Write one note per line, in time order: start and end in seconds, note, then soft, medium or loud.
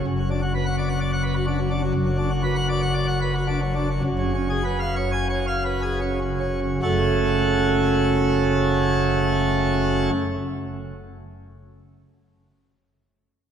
0.07 1.92 F#1 medium
0.07 1.92 F#2 medium
0.19 0.29 F#3 medium
0.31 0.41 D4 medium
0.42 0.52 F#4 medium
0.55 0.64 B4 medium
0.65 0.76 F#5 medium
0.78 0.88 D5 medium
0.89 0.99 F#5 medium
1.00 1.11 D5 medium
1.12 1.23 F#5 medium
1.23 1.34 B4 medium
1.35 1.46 F#4 medium
1.47 1.58 D4 medium
1.58 1.69 F#3 medium
1.71 1.81 D4 medium
1.82 1.93 F#3 medium
1.94 4.00 F#1 medium
1.94 4.00 F#2 loud
2.06 2.17 F#3 medium
2.18 2.30 D4 medium
2.31 2.42 F#4 medium
2.43 2.55 B4 medium
2.55 2.67 F#5 loud
2.69 2.81 D5 medium
2.82 2.94 F#5 loud
2.94 3.06 D5 loud
3.07 3.19 F#5 medium
3.22 3.33 B4 medium
3.35 3.47 F#4 loud
3.48 3.60 D4 medium
3.62 3.74 F#3 medium
3.75 3.88 D4 medium
3.91 4.02 F#3 medium
4.04 6.79 F#1 loud
4.04 6.79 F#2 loud
4.19 4.32 C#3 medium
4.34 4.47 C#4 loud
4.49 4.63 G#4 medium
4.64 4.78 B4 loud
4.80 4.94 F5 medium
4.96 5.11 C#5 medium
5.12 5.27 G#5 loud
5.30 5.45 C#5 loud
5.47 5.63 F5 medium
5.65 5.81 B4 medium
5.82 5.99 G#4 medium
6.01 6.19 C#4 medium
6.21 6.39 C#3 medium
6.40 6.59 C#4 medium
6.62 6.80 C#3 medium
6.82 10.10 F#1 medium
6.82 10.09 F#2 medium
6.82 10.10 C#3 medium
6.82 10.10 A3 medium
6.82 10.10 C#4 medium
6.82 10.09 F#4 medium
6.82 10.10 A4 medium